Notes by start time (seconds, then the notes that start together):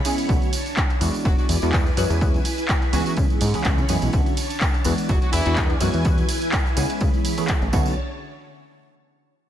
Already playing: E4 C#5 B5
0.05 E3 G#3 B3 C#4 G#4, open hi-hat, ride, tambourine
0.18 open hi-hat, tambourine
0.28 B1 D3 A3 B3 C#4 D4 F#4 A5, kick, closed hi-hat, tambourine
0.42 closed hi-hat, tambourine
0.53 open hi-hat, ride, tambourine
0.66 closed hi-hat, tambourine
0.77 kick, clap, closed hi-hat, tambourine
0.90 closed hi-hat, tambourine
1.00 E2 E3 G#3 B3 D4 E4 F#4 D5 G#5, open hi-hat, ride, tambourine
1.14 closed hi-hat, tambourine
1.25 E1 F#3 F#4, kick, closed hi-hat, tambourine
1.38 F#3 F#4, closed hi-hat, tambourine
1.49 E2, open hi-hat, ride, tambourine
1.62 E2 E3 G#3 B3 D4 F#4, closed hi-hat, tambourine
1.72 E3 G#3 B3 D4 B4, kick, clap, closed hi-hat, tambourine
1.86 closed hi-hat, tambourine
1.97 F#2 E3 G#3 B3 C#4 F#4 B4, open hi-hat, ride, tambourine
2.10 E2, closed hi-hat, tambourine
2.21 E3 G#3 B3 C#4 F#4, kick, closed hi-hat, tambourine
2.34 closed hi-hat, tambourine
2.45 open hi-hat, ride, tambourine
2.58 closed hi-hat, tambourine
2.68 kick, clap, closed hi-hat, tambourine
2.82 closed hi-hat, tambourine
2.93 C#2 E3 F#3 G#3 B3 C#4 F#4 G#4, open hi-hat, ride, tambourine
3.06 F#3 F#4, closed hi-hat, tambourine
3.17 C#3 C#5 B5, kick, closed hi-hat, tambourine
3.30 G#2, closed hi-hat, tambourine
3.41 G#2, open hi-hat, ride, tambourine
3.54 C#2 E3 G#3 B3 C#4 G#4, closed hi-hat, tambourine
3.64 C#2 G#3 C#4 C#5, kick, clap, closed hi-hat, tambourine
3.78 C#3, closed hi-hat, tambourine
3.89 F#2 E3 G#3 B3 C#4 G#4, open hi-hat, ride, tambourine
4.02 B1, closed hi-hat, tambourine
4.12 B1 D3 A3 B3 C#4 D4 F#4 C#5 A5, kick, closed hi-hat, tambourine
4.26 closed hi-hat, tambourine
4.37 open hi-hat, ride, tambourine
4.50 closed hi-hat, tambourine
4.61 kick, clap, closed hi-hat, tambourine
4.74 closed hi-hat, tambourine
4.84 E2 E3 G#3 B3 D4 E4 F#4 D5 G#5, open hi-hat, ride, tambourine
4.98 closed hi-hat, tambourine
5.09 E1 F#3 F#4, kick, closed hi-hat, tambourine
5.22 F#3 F#4, closed hi-hat, tambourine
5.32 E2 E3 E4, open hi-hat, ride, tambourine
5.46 E2 E3 G#3 B3 D4 F#4, closed hi-hat, tambourine
5.56 E3 G#3 B3 D4 B4, kick, clap, closed hi-hat, tambourine
5.70 closed hi-hat, tambourine
5.80 F#2 E3 G#3 B3 C#4 F#4 B4, open hi-hat, ride, tambourine
5.94 E2, closed hi-hat, tambourine
6.04 E3 G#3 B3 C#4 F#4, kick, closed hi-hat, tambourine
6.18 closed hi-hat, tambourine
6.29 open hi-hat, ride, tambourine
6.42 closed hi-hat, tambourine
6.52 kick, clap, closed hi-hat, tambourine
6.66 closed hi-hat, tambourine
6.76 C#2 E3 G#3 B3 C#4 G#4, open hi-hat, ride, tambourine
6.90 closed hi-hat, tambourine
7.00 C#3 C#5, kick, closed hi-hat, tambourine
7.14 closed hi-hat, tambourine
7.25 open hi-hat, ride, tambourine
7.38 E3 A3 B3 C#4 G#4, closed hi-hat, tambourine
7.48 kick, clap, closed hi-hat, tambourine
7.62 A1, closed hi-hat, tambourine
7.72 B1 D3 A3 B3 C#4 F#4, kick, tambourine
7.86 tambourine